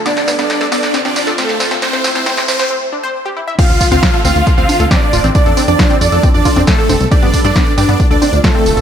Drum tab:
CC |----------------|----------------|x---------------|----------------|
HH |xxoxxxoxx-oxx-ox|xxoxxxox--------|xxoxxxoxx-oxx-ox|xxoxxxoxx-oxx-ox|
TB |xxxxxxxxxxxxxxxx|xxxxxxxx--------|xxxxxxxxxxxxxxxx|xxxxxxxxxxxxxxxx|
SD |oooooooooooooooo|oooooooo--------|----o-------o---|----o-------o---|
CG |----------o-----|-------o--------|----------o-----|----------oo--o-|
BD |----------------|----------------|o-o-o---o---o---|o---o---o-o-o---|

CC |----------------|
HH |xxoxxxoxx-oxx-ox|
TB |xxxxxxxxxxxxxxxx|
SD |----o-------o---|
CG |----------o-----|
BD |o-o-o---o---o---|